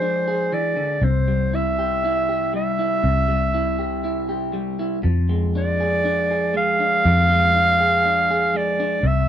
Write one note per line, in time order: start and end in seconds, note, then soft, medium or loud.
0.00 0.52 F3 medium
0.00 0.96 G#3 soft
0.00 0.97 D4 soft
0.00 0.27 G#4 soft
0.00 0.55 C5 medium
0.28 0.97 G#4 soft
0.52 0.76 E3 soft
0.52 1.06 D5 medium
0.77 1.02 D3 soft
1.02 2.99 C2 medium
1.02 3.02 C3 medium
1.02 1.56 C5 medium
1.28 2.52 G3 soft
1.54 2.03 E4 soft
1.54 2.54 E5 medium
1.79 2.28 G4 soft
2.05 2.78 E4 soft
2.29 3.78 G4 soft
2.54 3.27 G3 soft
2.54 4.51 E5 medium
2.79 3.53 E4 soft
3.03 5.01 C2 medium
3.03 4.98 C3 medium
3.28 4.52 G3 soft
3.54 4.03 E4 soft
3.79 4.28 G4 soft
4.04 4.78 E4 soft
4.29 4.98 G4 soft
4.53 5.04 G3 soft
4.79 4.98 E4 soft
5.03 7.01 F2 medium
5.03 7.03 F3 medium
5.29 6.53 G#3 soft
5.55 6.04 D4 soft
5.55 6.52 D5 medium
5.80 6.30 G#4 soft
6.05 6.79 D4 soft
6.31 7.79 G#4 soft
6.54 7.28 G#3 soft
6.54 8.58 F5 loud
6.80 7.54 D4 soft
7.05 9.00 F2 medium
7.05 8.98 F3 medium
7.29 8.53 G#3 soft
7.55 8.04 D4 soft
7.81 8.29 G#4 soft
8.05 8.79 D4 soft
8.31 8.99 G#4 medium
8.54 8.98 G#3 soft
8.54 9.08 D5 medium
8.80 8.98 D4 soft
9.03 9.29 C2 medium
9.03 9.29 C3 medium
9.03 9.29 E5 medium